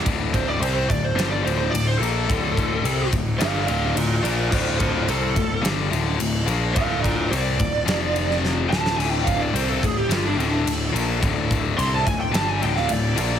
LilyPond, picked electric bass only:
\new Staff \with { instrumentName = "Picked electric bass" } { \clef bass \time 4/4 \key d \minor \tempo 4 = 107 d,,4 c,8 d,,8 g,,8 d,,8 d,,8 bes,,8 | d,,4 c,8 d,,8 g,,8 d,,8 d,,8 bes,,8 | d,,4 c,8 d,,8 g,,8 d,,8 d,,8 bes,,8 | r4 c,8 d,,8 f,,4. d,,8 |
d,,4 c,8 d,,8 g,,8 d,,8 d,,8 bes,,8 | d,,4 c,8 d,,8 g,,8 d,,8 d,,8 bes,,8 | }